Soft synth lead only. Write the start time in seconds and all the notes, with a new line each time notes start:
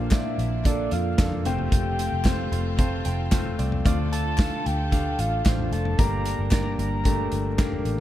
Already playing: F5
0.12 E5
0.66 D5
0.92 F5
1.46 G5
3.85 F5
4.12 A5
4.66 G5
5.20 F5
5.73 A5
5.98 A#5
6.53 A#5
6.80 A#5